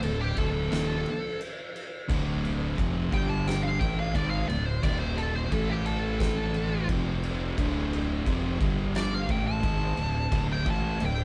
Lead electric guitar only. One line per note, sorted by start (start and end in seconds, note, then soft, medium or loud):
0.04 0.20 A4 medium
0.21 0.37 G4 loud
0.38 0.71 A4 loud
0.73 1.39 A4 loud
3.14 3.29 G5 loud
3.30 3.47 A5 medium
3.47 3.63 G5 medium
3.63 3.80 F5 medium
3.79 3.97 G5 medium
4.00 4.15 F5 loud
4.15 4.30 D5 medium
4.30 4.48 F5 medium
4.48 4.65 D5 medium
4.65 4.82 C5 loud
4.83 4.99 D5 medium
4.99 5.16 C5 loud
5.17 5.34 A4 medium
5.36 5.52 C5 medium
5.52 5.69 A4 medium
5.71 5.86 G4 loud
5.86 6.19 A4 loud
6.20 6.87 A4 loud
8.96 9.14 D5 loud
9.14 9.30 F5 medium
9.30 9.46 G5 medium
9.47 10.47 A5 loud
10.52 10.70 G5 medium
10.70 11.02 A5 loud
11.05 11.24 G5 medium